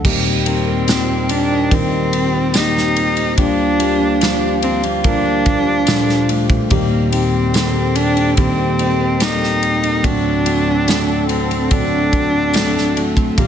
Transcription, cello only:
0, 0, Header, 1, 2, 480
1, 0, Start_track
1, 0, Tempo, 833333
1, 25, Time_signature, 4, 2, 24, 8
1, 7760, End_track
2, 0, Start_track
2, 0, Title_t, "Cello"
2, 0, Program_c, 0, 42
2, 36, Note_on_c, 0, 58, 73
2, 142, Note_off_c, 0, 58, 0
2, 276, Note_on_c, 0, 60, 82
2, 750, Note_on_c, 0, 62, 86
2, 758, Note_off_c, 0, 60, 0
2, 996, Note_on_c, 0, 60, 92
2, 1005, Note_off_c, 0, 62, 0
2, 1471, Note_on_c, 0, 63, 86
2, 1480, Note_off_c, 0, 60, 0
2, 1948, Note_off_c, 0, 63, 0
2, 1951, Note_on_c, 0, 62, 89
2, 2645, Note_off_c, 0, 62, 0
2, 2667, Note_on_c, 0, 60, 87
2, 2774, Note_off_c, 0, 60, 0
2, 2911, Note_on_c, 0, 62, 106
2, 3625, Note_on_c, 0, 57, 85
2, 3634, Note_off_c, 0, 62, 0
2, 3866, Note_on_c, 0, 58, 86
2, 3874, Note_off_c, 0, 57, 0
2, 4102, Note_off_c, 0, 58, 0
2, 4106, Note_on_c, 0, 60, 86
2, 4582, Note_on_c, 0, 62, 98
2, 4590, Note_off_c, 0, 60, 0
2, 4824, Note_off_c, 0, 62, 0
2, 4826, Note_on_c, 0, 60, 97
2, 5309, Note_on_c, 0, 63, 90
2, 5317, Note_off_c, 0, 60, 0
2, 5784, Note_on_c, 0, 62, 93
2, 5793, Note_off_c, 0, 63, 0
2, 6501, Note_off_c, 0, 62, 0
2, 6504, Note_on_c, 0, 60, 88
2, 6746, Note_on_c, 0, 62, 98
2, 6754, Note_off_c, 0, 60, 0
2, 7463, Note_on_c, 0, 57, 84
2, 7472, Note_off_c, 0, 62, 0
2, 7709, Note_on_c, 0, 58, 87
2, 7718, Note_off_c, 0, 57, 0
2, 7760, Note_off_c, 0, 58, 0
2, 7760, End_track
0, 0, End_of_file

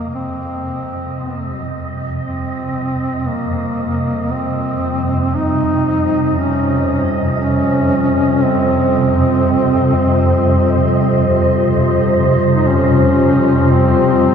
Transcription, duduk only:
0, 0, Header, 1, 2, 480
1, 0, Start_track
1, 0, Tempo, 500000
1, 13772, End_track
2, 0, Start_track
2, 0, Title_t, "Duduk"
2, 0, Program_c, 0, 69
2, 0, Note_on_c, 0, 58, 78
2, 106, Note_off_c, 0, 58, 0
2, 137, Note_on_c, 0, 60, 70
2, 1597, Note_off_c, 0, 60, 0
2, 2129, Note_on_c, 0, 60, 77
2, 3146, Note_on_c, 0, 58, 69
2, 3160, Note_off_c, 0, 60, 0
2, 4140, Note_on_c, 0, 60, 81
2, 4154, Note_off_c, 0, 58, 0
2, 5137, Note_on_c, 0, 63, 92
2, 5151, Note_off_c, 0, 60, 0
2, 6119, Note_off_c, 0, 63, 0
2, 6125, Note_on_c, 0, 61, 75
2, 6816, Note_off_c, 0, 61, 0
2, 7086, Note_on_c, 0, 61, 92
2, 8100, Note_on_c, 0, 60, 71
2, 8115, Note_off_c, 0, 61, 0
2, 11136, Note_off_c, 0, 60, 0
2, 12048, Note_on_c, 0, 63, 58
2, 12163, Note_on_c, 0, 61, 77
2, 12178, Note_off_c, 0, 63, 0
2, 13181, Note_on_c, 0, 60, 77
2, 13195, Note_off_c, 0, 61, 0
2, 13772, Note_off_c, 0, 60, 0
2, 13772, End_track
0, 0, End_of_file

